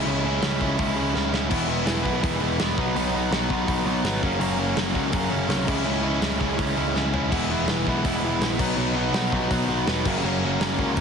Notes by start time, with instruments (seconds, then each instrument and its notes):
0.05 picked electric bass C#2, distorted electric guitar C#3 G#3 C#4 E4
0.25 distorted electric guitar C#3 G#3 C#4 E4
0.42 picked electric bass C#2, distorted electric guitar C#3 G#3 C#4 E4, snare, open hi-hat
0.61 picked electric bass C#2, distorted electric guitar C#3 G#3 C#4 E4, kick
0.78 picked electric bass C#2, distorted electric guitar C#3 G#3 C#4 E4, kick, open hi-hat
0.96 picked electric bass C#2, distorted electric guitar C#3 G#3 C#4 E4
1.14 picked electric bass C#2, distorted electric guitar C#3 G#3 C#4 E4, snare
1.32 distorted electric guitar C#3 G#3 C#4 E4, snare
1.49 picked electric bass E1, distorted electric guitar E3 G#3 B3 E4, kick, crash
1.68 distorted electric guitar E3 G#3 B3 E4
1.85 picked electric bass E1, distorted electric guitar E3 G#3 B3 E4, snare, open hi-hat
2.03 picked electric bass B1, distorted electric guitar E3 G#3 B3 E4, kick
2.22 picked electric bass E1, distorted electric guitar E3 G#3 B3 E4, kick, open hi-hat
2.40 picked electric bass E1, distorted electric guitar E3 G#3 B3 E4
2.58 picked electric bass E1, distorted electric guitar E3 G#3 B3 E4, snare, open hi-hat
2.77 picked electric bass B1, distorted electric guitar B2 F#3 B3 D#4, kick
2.95 picked electric bass B1, distorted electric guitar B2 F#3 B3 D#4, open hi-hat
3.15 distorted electric guitar B2 F#3 B3 D#4
3.31 picked electric bass B1, distorted electric guitar B2 F#3 B3 D#4, snare, open hi-hat
3.50 picked electric bass B1, distorted electric guitar B2 F#3 B3 D#4, kick
3.68 picked electric bass B1, distorted electric guitar B2 F#3 B3 D#4, kick, open hi-hat
3.85 picked electric bass B1, distorted electric guitar B2 F#3 B3 D#4
4.04 picked electric bass G#1, distorted electric guitar B2 F#3 B3 D#4, snare, open hi-hat
4.22 picked electric bass F#1, distorted electric guitar F#2 C#3 F#3 A#3 C#4, kick
4.39 picked electric bass F#1, distorted electric guitar F#2 C#3 F#3 A#3 C#4, open hi-hat
4.58 distorted electric guitar F#2 C#3 F#3 A#3 C#4
4.76 picked electric bass F#1, distorted electric guitar F#2 C#3 F#3 A#3 C#4, snare, open hi-hat
4.93 picked electric bass C#2, distorted electric guitar F#2 C#3 F#3 A#3 C#4, kick
5.11 picked electric bass F#1, distorted electric guitar F#2 C#3 F#3 A#3 C#4, kick, open hi-hat
5.29 picked electric bass F#1, distorted electric guitar F#2 C#3 F#3 A#3 C#4
5.48 picked electric bass C2, distorted electric guitar F#2 C#3 F#3 A#3 C#4, snare, open hi-hat
5.67 picked electric bass C#2, distorted electric guitar C#3 G#3 C#4 E4, kick, crash
5.85 picked electric bass C#2, distorted electric guitar C#3 G#3 C#4 E4
6.02 distorted electric guitar C#3 G#3 C#4 E4
6.21 picked electric bass C#2, distorted electric guitar C#3 G#3 C#4 E4, snare, open hi-hat
6.39 picked electric bass C#2, distorted electric guitar C#3 G#3 C#4 E4, kick
6.58 picked electric bass C#2, distorted electric guitar C#3 G#3 C#4 E4, kick, open hi-hat
6.76 picked electric bass C#2, distorted electric guitar C#3 G#3 C#4 E4
6.94 picked electric bass C#2, distorted electric guitar C#3 G#3 C#4 E4, snare
7.13 distorted electric guitar C#3 G#3 C#4 E4, floor tom
7.31 picked electric bass E1, distorted electric guitar E3 G#3 B3 E4, kick, crash
7.51 distorted electric guitar E3 G#3 B3 E4
7.67 picked electric bass E1, distorted electric guitar E3 G#3 B3 E4, snare, open hi-hat
7.86 picked electric bass B1, distorted electric guitar E3 G#3 B3 E4, kick
8.04 picked electric bass E1, distorted electric guitar E3 G#3 B3 E4, kick, open hi-hat
8.22 picked electric bass E1, distorted electric guitar E3 G#3 B3 E4
8.39 picked electric bass A#1, distorted electric guitar E3 G#3 B3 E4, snare, open hi-hat
8.59 picked electric bass B1, distorted electric guitar B2 F#3 B3 D#4, kick, crash
8.76 picked electric bass B1, distorted electric guitar B2 F#3 B3 D#4
8.95 distorted electric guitar B2 F#3 B3 D#4
9.13 picked electric bass B1, distorted electric guitar B2 F#3 B3 D#4, snare, open hi-hat
9.32 picked electric bass B1, distorted electric guitar B2 F#3 B3 D#4, kick
9.51 picked electric bass B1, distorted electric guitar B2 F#3 B3 D#4, kick, open hi-hat
9.69 picked electric bass B1, distorted electric guitar B2 F#3 B3 D#4
9.86 picked electric bass E1, distorted electric guitar B2 F#3 B3 D#4, snare, open hi-hat
10.05 picked electric bass F#1, distorted electric guitar F#2 C#3 F#3 A#3 C#4, kick, crash
10.23 picked electric bass F#1, distorted electric guitar F#2 C#3 F#3 A#3 C#4
10.44 distorted electric guitar F#2 C#3 F#3 A#3 C#4
10.60 picked electric bass F#1, distorted electric guitar F#2 C#3 F#3 A#3 C#4, snare, open hi-hat
10.78 picked electric bass C#2, distorted electric guitar F#2 C#3 F#3 A#3 C#4, kick
10.96 picked electric bass F#1, distorted electric guitar F#2 C#3 F#3 A#3, kick, open hi-hat